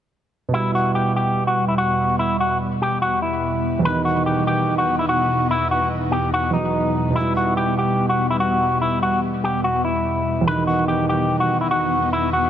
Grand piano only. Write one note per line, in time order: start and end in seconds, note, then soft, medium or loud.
0.49 3.78 B2 medium
0.54 3.81 G3 medium
0.59 3.83 E4 medium
3.79 6.47 E2 medium
3.79 6.49 B2 medium
3.86 6.51 D#3 medium
3.86 6.52 D#4 medium
6.51 7.14 E2 medium
6.51 7.09 B2 soft
6.51 7.16 F#3 soft
6.56 7.17 D#4 medium
7.11 10.40 B2 medium
7.16 10.43 G3 medium
7.21 10.45 E4 medium
10.41 12.50 E2 medium
10.41 12.50 B2 medium
10.48 12.50 D#3 medium
10.48 12.50 D#4 medium